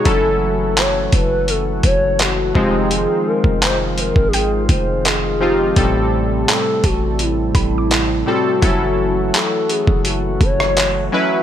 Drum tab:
HH |x---x-x-x-x-x---|x---x-x-x-x-x---|x---x-x-x-x-x---|x---x-x-x-x-x---|
CP |----x-------x---|----x-------x---|----x-------x---|----x-------x---|
SD |----------------|----------------|----------------|-----------r----|
BD |o-----o---o---o-|---o---o--o-----|o-----o---o-----|o------o--o-----|